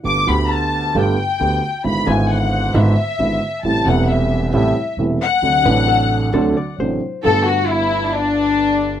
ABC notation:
X:1
M:4/4
L:1/8
Q:1/4=133
K:G
V:1 name="Violin section"
d' b a2 g4 | b ^g f2 e4 | a f e2 e2 z f- | f6 z2 |
A F E2 D4 |]
V:2 name="Hollow-body jazz guitar"
z8 | z8 | z8 | z B A2 A d c2 |
z8 |]
V:3 name="Upright piano" clef=bass
[G,,,G,,D,A,B,G] [D,,D,A,B,G]3 [G,,,G,,D,A,B,G] z [D,,D,A,B,G] z | [^G,,,^G,,D,^G,B,E] [G,,,G,,D,G,B,E]3 [G,,,G,,D,G,B,E] z [G,,,G,,D,G,B,E] z | [A,,,A,,C,G,A,E] [E,,,E,,C,G,A,E]3 [A,,,A,,C,G,A,E] z [E,,,E,,C,G,A,E] z | [D,,C,D,F,A,D] [A,,,A,,C,F,A,D]3 [D,,C,D,F,A,D] z [A,,,A,,C,F,A,D] z |
[G,,,G,,D,A,B,G]8 |]
V:4 name="Upright bass" clef=bass
G,,, D,,3 G,,, z D,, z | ^G,,, G,,,3 G,,, z G,,, z | A,,, E,,,3 A,,, z E,,, z | D,, A,,,3 D,, z A,,, z |
G,,,8 |]